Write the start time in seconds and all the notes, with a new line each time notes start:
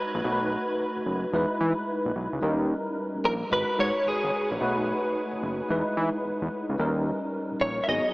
Already playing: G#3 D#4 F#4 B4
0.15 A#1
0.23 B1 A3 D#4 F#4 A#4
0.32 B4
0.96 F#1
1.06 F#1
1.32 E2 G#3 D#4 E4 B4
1.61 E3
2.05 A#1
2.15 B1
2.33 C#2
2.41 D#2 G3 C#4 D#4 A#4
3.15 A#1
3.24 A#1 A#4
3.50 G#1 G#3 D#4 F#4 B4
3.79 G#2 C#5
4.06 G#1 G#4
4.24 G#1
4.51 A#1
4.59 B1 A3 D#4 F#4 B4
5.33 F#1
5.43 F#1
5.68 E2 G#3 D#4 E4 B4
5.97 E3
6.24 E2
6.42 E2
6.69 C#2
6.78 D#2 G3 C#4 D#4 A#4
7.52 A#1
7.61 A#1 C#5
7.84 F#3 B3 E5
7.88 G#1 D#4 G#4 D#5